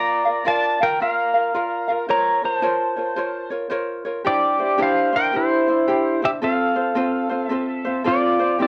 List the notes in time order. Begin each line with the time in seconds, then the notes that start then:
Already playing: F4 A#4 D5 F5 A#5
0.25 F4 A#4 F5
0.45 F4 A#4 D5 F5 A5
0.81 F4 A#4 F5 G5
1.00 F4 A#4 D5 F5
1.34 F4 A#4 F5
1.54 F4 A#4 D5 F5
1.88 F4 A#4 F5
2.08 F4 A#4 C5 C#5 A#5
2.42 F4 A#4 C5 C#5 A5
2.62 F4 A#4 C5 C#5
2.96 F4 A#4 C#5
3.16 F4 A#4 C5 C#5
3.50 F4 A#4 C#5
3.70 F4 A#4 C5 C#5
4.05 F4 A#4 C#5
4.24 D4 E4 G4 C5 D5
4.59 D4 E4 C5
4.78 D4 E4 G4 C5
4.82 C5 F5
5.13 D4 E4 C5 G5
5.17 A#4
5.33 D4 E4 G4 C5
5.37 E4
5.68 D4 E4 C5
5.87 D4 E4 G4 C5
6.22 D4 E4 G4 C5 E5
6.42 C4 F4 A4 C5 F5
6.76 C4 F4 C5
6.95 C4 F4 A4 C5
7.30 C4 F4 C5
7.46 A4 E5
7.50 C4 F4 C5
7.85 C4 F4 C5
8.04 C4 F4 A4 C5
8.09 D5
8.39 C4 F4 C5
8.59 C4 E4 G4 B4 C5